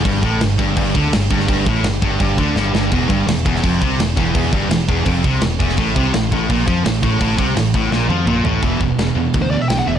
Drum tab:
CC |x-x-x-x-x-x-x-x-|x-x-x-x-x-x-----|x-x-x-x-x-x-x-x-|x-x-x-x-x-x-x-x-|
SD |----o-------o--o|----o-------o-o-|----o--o----o---|----o-------o--o|
T1 |----------------|----------------|----------------|----------------|
T2 |----------------|----------------|----------------|----------------|
FT |----------------|----------------|----------------|----------------|
BD |o-o---o-o-o---o-|o-o---o-o-o-----|o-o---o-o-o---o-|o-o---o-o-o---o-|

CC |x-x-x-x-x-x-x-x-|x-x-x-x---------|x---x---x---x---|
SD |----o-------o---|----o---o-------|----o-------o---|
T1 |----------------|----------o-----|----------------|
T2 |----------------|------------o---|----------------|
FT |----------------|--------------o-|----------------|
BD |o-o---o-o-o---o-|o-o---o---------|o-o-----o-------|